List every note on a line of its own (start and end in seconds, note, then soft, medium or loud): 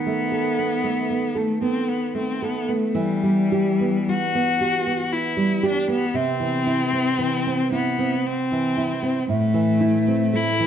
0.00 2.91 D#3 medium
0.00 1.39 B3 medium
0.06 0.48 A3 soft
0.32 0.74 A4 soft
0.59 1.00 B3 soft
0.84 1.25 A3 soft
1.10 1.52 B3 soft
1.35 1.62 A3 medium
1.35 1.77 A4 soft
1.62 2.46 B3 soft
1.62 1.90 C4 medium
1.88 2.15 B3 medium
2.15 2.57 A3 soft
2.15 2.45 C4 medium
2.42 2.71 B3 medium
2.42 2.85 A4 soft
2.68 2.97 A3 medium
2.68 2.95 B3 soft
2.95 6.10 E3 medium
2.95 4.11 G3 medium
3.23 3.69 G3 soft
3.52 3.97 G4 medium
3.80 4.24 B3 medium
4.08 4.51 G3 soft
4.08 5.14 F#4 medium
4.35 4.76 B3 soft
4.61 5.01 G4 soft
4.87 5.68 B3 soft
5.12 5.66 E4 medium
5.37 5.78 G3 soft
5.63 5.90 D4 medium
5.63 6.04 G4 medium
5.88 6.15 B3 soft
5.88 6.17 B3 medium
6.14 9.24 C3 medium
6.14 7.72 C4 medium
6.40 6.82 E3 medium
6.66 7.08 E4 medium
6.93 7.35 C4 medium
7.19 7.61 E3 medium
7.47 7.89 C4 medium
7.72 8.28 B3 medium
7.72 8.15 E4 medium
7.99 8.83 C4 medium
8.26 9.29 C4 medium
8.52 8.93 E3 medium
8.77 9.18 E4 medium
9.03 9.28 C4 medium
9.29 10.67 A2 medium
9.29 10.37 A3 medium
9.54 9.96 E3 medium
9.81 10.23 E4 medium
10.08 10.49 C4 medium
10.33 10.67 A3 medium
10.33 10.67 E4 medium
10.60 10.67 E3 medium